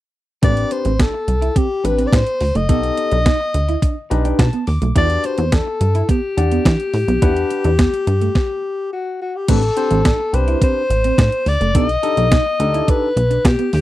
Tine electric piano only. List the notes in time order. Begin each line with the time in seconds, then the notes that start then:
0.42 C4 D4 G4 B4
1.84 C4 D4 G4 B4
2.69 B3 D#4 G4 A4
4.10 D4 D#4 G4 B4 D#5
4.25 G5
4.39 A5
4.67 D6
4.95 D4 F#4 G4 B4
6.37 D4 G4 D5 F#5
7.22 D4 G4 B4 F#5
9.48 C4 D4 G4 B4
9.77 C4 D4 G4 C5
10.33 C4 D4 G4 B4
11.75 D4 D#4 G4 A4
12.03 D4 D#4 G4 A4
12.60 D4 D#4 G4 A4